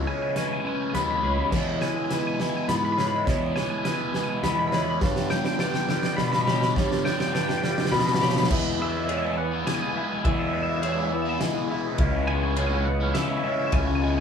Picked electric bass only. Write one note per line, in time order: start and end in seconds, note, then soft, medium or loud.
0.94 1.20 D#2 medium
1.23 1.36 C#2 medium
1.38 1.51 D#2 medium
1.52 1.79 E2 medium
2.68 3.23 G#2 medium
3.27 3.53 E2 loud
4.43 4.97 E2 medium
5.02 5.28 G2 loud
6.18 6.72 B2 medium
6.77 7.03 G2 loud
7.92 8.46 B2 loud
8.51 9.63 E2 loud
10.25 11.37 E2 loud
11.99 13.11 C#2 loud
13.73 14.20 C#2 loud